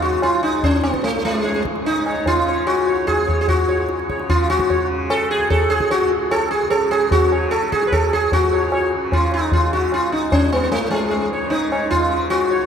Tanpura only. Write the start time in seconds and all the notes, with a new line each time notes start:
Already playing: C#2 G#2 C#3
0.45 C#2
1.06 G#2
1.69 C#3
2.32 C#3
2.95 C#2
3.54 G#2
4.16 C#3
4.78 C#3
5.38 C#2
6.00 G#2
6.61 C#3
7.25 C#3
7.85 C#2
8.34 G#2
8.93 C#3
9.54 C#3
10.14 C#2
10.75 G#2
11.36 C#3
11.95 C#3
12.57 C#2